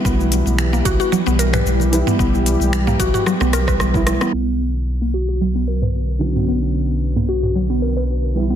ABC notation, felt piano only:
X:1
M:4/4
L:1/16
Q:"Swing 16ths" 1/4=112
K:Bm
V:1 name="Felt piano"
[E,G,B,E]12- [E,G,B,E]2 [E,G,B,E]2- | [E,G,B,E]12- [E,G,B,E] [E,G,B,E]3 | z12 z2 [D,F,B,C]2- | [D,F,B,C]12- [D,F,B,C]2 [E,G,B,E]2 |]